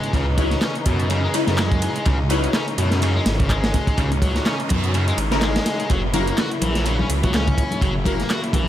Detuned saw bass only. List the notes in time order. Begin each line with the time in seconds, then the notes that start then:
0.13 C#2
0.86 F#2
1.48 F#2
2.06 C#2
2.78 F#2
3.26 G#1
3.98 C#2
4.71 F#2
5.18 G#1
5.90 F#1
6.62 A#1
7.10 C#2
7.82 F#1
8.53 A#1